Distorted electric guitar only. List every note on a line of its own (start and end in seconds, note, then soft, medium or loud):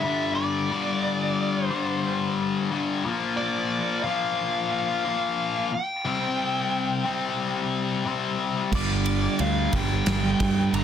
0.02 0.68 G2 medium
0.02 0.69 D3 medium
0.02 0.69 G3 medium
0.70 1.69 G2 medium
0.70 1.69 D3 medium
0.70 1.69 G3 loud
1.70 2.70 G2 medium
1.70 2.70 D3 medium
1.70 2.69 G3 medium
2.71 3.03 G2 medium
2.71 3.03 D3 medium
2.71 3.04 G3 medium
3.05 4.03 A#2 medium
3.05 4.04 F3 medium
3.05 4.04 A#3 loud
4.04 5.03 A#2 medium
4.04 5.04 F3 medium
4.04 5.04 A#3 medium
5.05 5.71 A#2 medium
5.05 5.71 F3 medium
5.05 5.70 A#3 medium
6.05 7.04 C3 medium
6.05 7.07 G3 medium
6.05 7.04 C4 loud
7.05 8.04 C3 medium
7.05 8.06 G3 medium
7.05 8.04 C4 medium
8.05 8.71 C3 medium
8.05 8.74 G3 medium
8.05 8.72 C4 medium
8.73 9.75 G2 medium
8.73 9.72 D3 loud
8.73 9.73 G3 medium
9.73 10.72 G2 medium
9.73 10.72 D3 medium
9.73 10.72 G3 medium
10.73 10.84 G2 medium
10.73 10.84 D3 medium
10.73 10.84 G3 medium